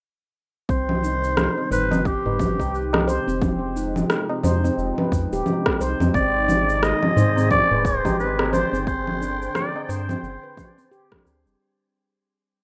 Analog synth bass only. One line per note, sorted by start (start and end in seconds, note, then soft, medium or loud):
0.69 1.49 C2 medium
1.71 2.17 G1 medium
2.25 2.61 G1 medium
2.59 3.19 C2 medium
3.28 4.04 F1 medium
4.44 4.70 F2 medium
4.78 4.93 F1 loud
5.12 5.27 F2 loud
5.32 5.42 D#1 medium
5.80 5.95 C2 medium
6.00 6.11 F2 medium
6.14 6.94 G#1 loud
7.17 7.62 G#2 medium
7.71 8.06 D#1 medium
8.05 8.64 G#1 medium
8.73 9.49 G1 medium
9.89 10.16 G2 medium
10.23 10.38 G1 loud
11.26 11.47 D2 medium
11.46 11.56 F1 medium